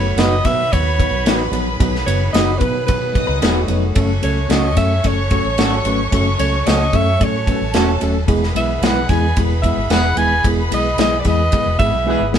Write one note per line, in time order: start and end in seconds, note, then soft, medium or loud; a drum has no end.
0.00 0.12 F#1 loud
0.00 3.92 D#3 medium
0.00 8.24 F#3 medium
0.00 0.28 A3 medium
0.00 3.93 B3 medium
0.00 0.27 F#4 medium
0.00 1.49 F#4 medium
0.00 3.11 B4 medium
0.00 0.21 C#5 medium
0.00 3.11 B5 loud
0.16 0.39 F#1 medium
0.16 0.33 F#3 medium
0.16 0.33 B3 medium
0.16 0.33 D#4 loud
0.16 0.33 D#4 medium
0.16 0.33 F#4 loud
0.16 0.34 F#4 medium
0.16 0.34 B4 loud
0.16 0.34 B4 medium
0.16 0.47 D#5 loud
0.16 snare loud
0.16 ride medium
0.45 0.67 B2 loud
0.45 0.60 F#3 loud
0.45 0.60 B3 medium
0.45 0.60 D#4 medium
0.45 0.60 F#4 medium
0.45 0.61 B4 loud
0.45 0.74 E5 loud
0.45 kick loud
0.45 snare soft
0.45 ride medium
0.72 1.05 D#2 medium
0.72 0.87 F#3 medium
0.72 0.87 B3 medium
0.72 0.87 D#4 medium
0.72 0.88 F#4 medium
0.72 0.88 B4 medium
0.72 1.53 C#5 loud
0.72 kick medium
0.72 ride medium
0.98 1.13 F#3 medium
0.98 1.13 B3 medium
0.98 1.14 D#4 medium
0.98 1.14 F#4 medium
0.98 1.14 B4 medium
0.98 kick medium
0.98 ride medium
1.11 1.26 B1 loud
1.25 1.48 A1 loud
1.25 1.40 F#3 medium
1.25 1.41 B3 medium
1.25 1.41 D#4 medium
1.25 1.42 D#4 medium
1.25 1.41 F#4 medium
1.25 1.42 F#4 loud
1.25 1.41 B4 medium
1.25 1.42 B4 loud
1.25 snare loud
1.25 ride medium
1.51 1.74 A#1 medium
1.51 1.67 F#3 loud
1.51 1.67 B3 loud
1.51 1.68 D#4 medium
1.51 1.68 F#4 loud
1.51 3.94 G#4 medium
1.51 1.68 B4 loud
1.51 ride medium
1.79 2.02 B1 loud
1.79 1.95 F#3 loud
1.79 1.95 B3 loud
1.79 1.95 D#4 loud
1.79 1.95 F#4 medium
1.79 1.96 B4 loud
1.79 kick loud
1.79 ride medium
1.95 snare soft
2.06 2.29 F#1 loud
2.06 2.22 F#3 medium
2.06 2.22 B3 medium
2.06 2.22 D#4 medium
2.06 2.22 F#4 medium
2.06 2.23 B4 medium
2.06 2.32 C#5 medium
2.06 ride medium
2.33 2.56 F#1 medium
2.33 2.48 F#3 medium
2.33 2.49 B3 medium
2.33 2.49 D#4 medium
2.33 2.50 D#4 medium
2.33 2.49 F#4 medium
2.33 2.50 F#4 medium
2.33 2.50 B4 medium
2.33 2.60 D#5 loud
2.33 snare loud
2.33 ride medium
2.59 2.83 B2 loud
2.59 2.75 F#3 loud
2.59 2.75 B3 medium
2.59 2.75 D#4 medium
2.59 2.76 F#4 loud
2.59 2.86 B4 loud
2.59 2.76 B4 loud
2.59 kick loud
2.59 ride medium
2.87 3.21 B2 loud
2.87 3.02 F#3 medium
2.87 3.02 B3 medium
2.87 3.02 D#4 medium
2.87 3.03 F#4 medium
2.87 3.65 B4 medium
2.87 3.03 B4 medium
2.87 kick loud
2.87 ride medium
3.13 3.29 F#3 medium
3.13 3.29 B3 medium
3.13 3.30 D#4 medium
3.13 3.30 F#4 medium
3.13 3.30 B4 medium
3.13 3.68 D#5 medium
3.13 3.68 D#6 medium
3.13 kick loud
3.13 ride medium
3.27 3.39 C#2 medium
3.27 3.41 D#4 medium
3.27 3.41 B4 medium
3.41 3.64 E1 medium
3.41 3.56 F#3 medium
3.41 3.57 B3 medium
3.41 3.54 B3 medium
3.41 3.57 D#4 medium
3.41 3.58 D#4 medium
3.41 3.57 F#4 medium
3.41 3.58 F#4 medium
3.41 3.55 G#4 medium
3.41 3.58 B4 medium
3.41 snare loud
3.41 ride medium
3.55 3.94 A3 medium
3.55 3.94 F#4 medium
3.67 3.90 F1 medium
3.67 3.83 F#3 loud
3.67 3.83 B3 medium
3.67 3.84 D#4 loud
3.67 3.84 F#4 medium
3.67 3.84 B4 loud
3.67 ride medium
3.95 4.18 F#1 medium
3.95 4.10 F#3 loud
3.95 4.10 A3 loud
3.95 8.25 A3 medium
3.95 4.11 C#4 loud
3.95 8.25 C#4 medium
3.95 4.11 F#4 loud
3.95 4.11 A4 loud
3.95 8.25 A4 medium
3.95 7.44 C#5 medium
3.95 7.44 C#6 loud
3.95 kick loud
3.95 ride medium
4.21 4.45 C#2 medium
4.21 4.37 F#3 medium
4.21 4.37 A3 medium
4.21 4.38 C#4 medium
4.21 4.38 F#4 medium
4.21 4.38 A4 medium
4.21 4.52 C#5 medium
4.21 ride medium
4.48 4.76 C#2 medium
4.48 4.64 F#3 medium
4.48 4.64 A3 medium
4.48 4.65 A3 medium
4.48 4.65 C#4 medium
4.48 4.66 C#4 medium
4.48 4.65 F#4 medium
4.48 4.66 F#4 medium
4.48 4.65 A4 medium
4.48 4.77 D#5 loud
4.48 snare loud
4.48 ride medium
4.53 4.66 A4 loud
4.76 4.99 F#2 loud
4.76 4.91 F#3 loud
4.76 4.92 A3 loud
4.76 4.92 C#4 loud
4.76 4.92 F#4 medium
4.76 4.92 A4 loud
4.76 5.08 E5 loud
4.76 kick loud
4.76 snare soft
4.76 ride medium
5.03 5.37 F#1 loud
5.03 5.18 F#3 medium
5.03 5.19 A3 medium
5.03 5.19 C#4 medium
5.03 5.19 F#4 medium
5.03 5.20 A4 medium
5.03 5.87 C#5 loud
5.03 kick medium
5.03 ride medium
5.30 5.45 F#3 medium
5.30 5.46 A3 medium
5.30 5.46 C#4 medium
5.30 5.43 C#4 medium
5.30 5.43 F#4 medium
5.30 5.46 F#4 medium
5.30 5.43 A4 medium
5.30 5.47 A4 medium
5.30 kick medium
5.30 ride medium
5.45 5.56 A1 loud
5.57 5.80 G#1 loud
5.57 5.73 F#3 medium
5.57 5.73 A3 medium
5.57 5.73 C#4 medium
5.57 5.97 C#4 loud
5.57 5.74 C#4 loud
5.57 5.97 F#4 loud
5.57 5.74 F#4 medium
5.57 5.97 A4 loud
5.57 5.74 A4 medium
5.57 5.74 A4 loud
5.57 snare loud
5.57 ride medium
5.84 6.06 G#1 medium
5.84 6.00 F#3 loud
5.84 6.00 A3 loud
5.84 6.00 C#4 loud
5.84 6.01 F#4 loud
5.84 6.01 B4 loud
5.84 ride medium
6.11 6.34 F#1 loud
6.11 6.27 F#3 loud
6.11 6.27 A3 medium
6.11 6.27 C#4 loud
6.11 6.28 F#4 loud
6.11 6.28 A4 loud
6.11 kick loud
6.11 ride medium
6.39 6.61 C#2 loud
6.39 6.54 F#3 medium
6.39 6.54 A3 medium
6.39 6.54 C#4 medium
6.39 6.54 F#4 medium
6.39 6.55 A4 medium
6.39 6.68 C#5 loud
6.39 ride medium
6.65 6.89 C#2 loud
6.65 6.81 F#3 medium
6.65 6.81 A3 medium
6.65 6.81 C#4 medium
6.65 6.82 C#4 medium
6.65 6.82 F#4 medium
6.65 6.82 A4 medium
6.65 6.97 D#5 loud
6.65 snare loud
6.65 ride medium
6.93 7.15 F#2 loud
6.93 7.08 F#3 loud
6.93 7.08 A3 loud
6.93 7.08 C#4 medium
6.93 7.09 F#4 loud
6.93 7.09 A4 loud
6.93 7.26 E5 loud
6.93 kick loud
6.93 ride medium
7.19 7.54 A2 loud
7.19 7.34 F#3 medium
7.19 7.35 A3 medium
7.19 7.35 C#4 medium
7.19 7.35 F#4 medium
7.19 7.36 A4 medium
7.19 kick loud
7.19 ride medium
7.24 8.03 C#5 loud
7.47 7.62 F#3 medium
7.47 7.62 A3 medium
7.47 7.59 C#4 medium
7.47 7.62 C#4 medium
7.47 7.59 F#4 medium
7.47 7.63 F#4 medium
7.47 7.59 A4 medium
7.47 8.27 A4 medium
7.47 7.63 B4 medium
7.47 8.27 A5 medium
7.47 kick medium
7.47 ride medium
7.61 7.72 A1 medium
7.73 7.96 E1 loud
7.73 7.89 F#3 medium
7.73 7.89 A3 medium
7.73 8.13 C#4 loud
7.73 7.89 C#4 medium
7.73 7.90 C#4 medium
7.73 8.13 F#4 loud
7.73 7.89 F#4 medium
7.73 7.90 F#4 medium
7.73 8.13 A4 loud
7.73 7.90 A4 medium
7.73 snare loud
7.73 ride medium
8.00 8.23 D#1 medium
8.00 8.16 F#3 loud
8.00 8.16 A3 medium
8.00 8.16 C#4 loud
8.00 8.16 F#4 medium
8.00 8.17 A4 loud
8.00 ride medium
8.27 8.50 E1 loud
8.27 8.43 E3 loud
8.27 12.38 E3 medium
8.27 12.38 G#3 medium
8.27 8.43 G#3 loud
8.27 8.43 B3 medium
8.27 12.38 B3 medium
8.27 8.43 E4 medium
8.27 12.38 G#4 medium
8.27 8.44 G#4 loud
8.27 12.38 B4 medium
8.27 12.38 B5 loud
8.27 kick loud
8.27 ride medium
8.43 snare soft
8.55 8.77 B1 medium
8.55 8.70 E3 medium
8.55 8.70 G#3 medium
8.55 8.70 B3 medium
8.55 8.71 E4 medium
8.55 8.71 B4 medium
8.55 8.85 E5 medium
8.55 ride medium
8.82 9.04 B1 loud
8.82 8.97 E3 medium
8.82 8.98 G#3 medium
8.82 8.97 B3 medium
8.82 8.98 B3 medium
8.82 8.98 E4 medium
8.82 8.98 G#4 loud
8.82 8.98 B4 loud
8.82 8.98 B4 medium
8.82 9.11 F#5 medium
8.82 snare loud
8.82 ride medium
9.09 9.31 E2 loud
9.09 9.24 E3 loud
9.09 9.25 G#3 loud
9.09 9.25 B3 medium
9.09 9.25 E4 loud
9.09 9.25 G#4 loud
9.09 9.36 G#5 loud
9.09 kick loud
9.09 snare soft
9.09 ride medium
9.36 9.69 E1 loud
9.36 9.51 E3 medium
9.36 9.52 G#3 medium
9.36 9.52 B3 medium
9.36 9.52 E4 medium
9.36 9.53 G#4 medium
9.36 kick loud
9.36 ride medium
9.62 9.78 E3 medium
9.62 9.78 G#3 medium
9.62 9.78 B3 medium
9.62 9.75 B3 medium
9.62 9.76 E4 medium
9.62 9.79 E4 medium
9.62 9.75 G#4 loud
9.62 9.79 B4 medium
9.62 9.92 E5 medium
9.62 kick medium
9.62 ride medium
9.77 9.88 G#1 medium
9.90 10.12 E1 loud
9.90 10.05 E3 medium
9.90 10.05 G#3 medium
9.90 10.05 B3 medium
9.90 10.29 B3 loud
9.90 10.06 E4 medium
9.90 10.29 E4 loud
9.90 10.06 E4 medium
9.90 10.29 G#4 loud
9.90 10.06 G#4 medium
9.90 10.06 B4 medium
9.90 10.19 F#5 loud
9.90 snare loud
9.90 ride medium
10.16 10.39 D#1 medium
10.16 10.31 E3 medium
10.16 10.32 G#3 medium
10.16 10.32 B3 medium
10.16 10.32 E4 medium
10.16 10.32 G#4 medium
10.16 10.45 G#5 loud
10.16 ride medium
10.43 10.66 E1 loud
10.43 10.59 E3 medium
10.43 10.59 G#3 medium
10.43 10.59 B3 medium
10.43 10.59 E4 medium
10.43 10.60 G#4 loud
10.43 kick loud
10.43 ride medium
10.71 10.93 B1 loud
10.71 10.86 E3 medium
10.71 10.86 G#3 medium
10.71 10.86 B3 medium
10.71 10.87 E4 medium
10.71 10.87 G#4 medium
10.71 10.98 D#5 loud
10.71 ride medium
10.98 11.20 B1 loud
10.98 11.13 E3 medium
10.98 11.13 G#3 medium
10.98 11.13 B3 medium
10.98 11.14 E4 medium
10.98 11.13 E4 medium
10.98 11.14 G#4 medium
10.98 11.14 B4 medium
10.98 snare loud
10.98 ride medium
11.02 11.19 D#5 loud
11.20 11.28 D5 medium
11.25 11.47 E2 loud
11.25 11.40 E3 loud
11.25 11.40 G#3 medium
11.25 11.40 B3 medium
11.25 11.41 E4 medium
11.25 11.41 G#4 loud
11.25 11.78 D#5 loud
11.25 kick loud
11.25 snare soft
11.25 ride medium
11.51 11.66 E3 medium
11.51 11.67 G#3 medium
11.51 11.67 B3 medium
11.51 11.67 E4 medium
11.51 11.67 G#4 medium
11.51 kick loud
11.51 ride medium
11.66 11.77 E1 loud
11.78 11.91 G#1 loud
11.78 11.94 E3 medium
11.78 11.94 G#3 medium
11.78 11.94 B3 medium
11.78 11.92 B3 medium
11.78 11.94 E4 medium
11.78 11.92 E4 medium
11.78 11.95 G#4 medium
11.78 11.92 G#4 loud
11.78 12.29 E5 loud
11.78 kick loud
11.78 ride medium
11.93 12.15 B1 loud
12.05 12.20 E3 medium
12.05 12.21 G#3 medium
12.05 12.21 B3 medium
12.05 12.21 E4 medium
12.05 12.22 E4 medium
12.05 12.21 G#4 loud
12.05 12.22 G#4 medium
12.05 12.38 G#4 loud
12.05 12.22 B4 loud
12.09 12.38 E4 medium
12.09 12.38 B4 loud
12.20 12.31 G#1 medium
12.32 12.38 C2 medium
12.32 12.38 E3 loud
12.32 12.38 G#3 loud
12.32 12.38 B3 loud
12.32 12.38 E4 loud
12.32 12.38 G#4 loud
12.32 snare loud